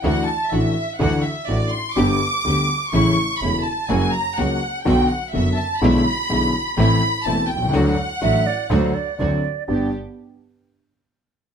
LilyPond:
<<
  \new Staff \with { instrumentName = "Violin section" } { \time 4/4 \key g \major \tempo 4 = 124 fis''8 a''8 e''4 fis''8 e''8 d''8 c'''8 | d'''2 cis'''4 b''8 a''8 | aes''8 ais''8 fis''4 g''8 fis''8 e''8 a''8 | b''2 b''4 a''8 g''8 |
fis''2. r4 | r1 | }
  \new Staff \with { instrumentName = "Flute" } { \time 4/4 \key g \major r1 | r1 | r1 | r1 |
r4 e''8 d''8 c''8 d''8 d''4 | d''8 r2. r8 | }
  \new Staff \with { instrumentName = "String section" } { \time 4/4 \key g \major <d' e' fis'>8 r8 <d' e' fis'>8 r8 <d' e' fis'>8 r8 <d' e' fis'>8 r8 | <b d' g'>8 r8 <b d' g'>8 r8 <a cis' e'>8 r8 <a cis' e'>8 r8 | <ais cis' fis'>8 r8 <ais cis' fis'>8 r8 <b d' fis'>8 r8 <b d' fis'>8 r8 | <gis d' e'>8 r8 <gis d' e'>8 r8 <a c' e'>8 r8 <a c' e'>8 r8 |
<a d' fis'>8 r8 <a d' fis'>8 r8 <a d' fis'>8 r8 <c' d' fis'>8 r8 | <b d' g'>8 r2. r8 | }
  \new Staff \with { instrumentName = "Grand piano" } { \clef bass \time 4/4 \key g \major <d, d e a d' fis'>8 r8 <a,, a, e a d' fis'>8 r8 <d, d e a d' fis'>8 r8 <a,, a, e a d' fis'>8 r8 | <g,, g, d g b g'>8 r8 <d, d g b g'>8 r8 <a,, a, cis e a e'>8 r8 <e,, e, cis e a e'>8 r8 | <fis, cis fis ais fis'>8 r8 <cis, cis fis ais fis'>8 r8 <b,, b, d fis b fis'>8 r8 <fis,, fis, d fis b fis'>8 r8 | <b,, b, d gis b e'>8 r8 <b,, b, d gis b e'>8 r8 <a,, a, e a c' a'>8 r8 <e,, e, e a c' a'>8 r32 b,,32 c,32 cis,32 |
<d, d fis a d' a'>8 r8 <a,, a, fis a d' a'>8 r8 <d, d fis a d' a'>8 r8 <d, d fis c' d' a'>8 r8 | <g, b d' g'>8 r2. r8 | }
  \new Staff \with { instrumentName = "Double bass" } { \clef bass \time 4/4 \key g \major d,8 r8 a,,8 r8 d,8 r8 a,,8 r8 | g,,8 r8 d,8 r8 a,,8 r8 e,,8 r8 | fis,,8 r8 cis,8 r8 b,,8 r8 fis,,8 r8 | b,,8 r8 b,,8 r8 a,,8 r8 e,,8 c,8 |
d,8 r8 a,,8 r8 d,8 r8 d,8 r8 | g,,8 r2. r8 | }
>>